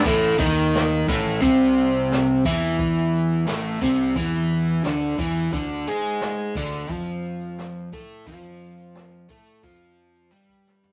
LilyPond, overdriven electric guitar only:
\new Staff \with { instrumentName = "Overdriven electric guitar" } { \time 4/4 \key d \major \tempo 4 = 88 <a, a>8 <dis dis'>4 <a, a>8 <c c'>4. <e e'>8~ | <e e'>4 <a, a>8 <c c'>8 <e e'>4 <d d'>8 <e e'>8 | <d d'>8 <gis gis'>4 <d d'>8 <f f'>4. <a a'>8 | <f f'>4. <a a'>8 <f f'>4 <g g'>4 | }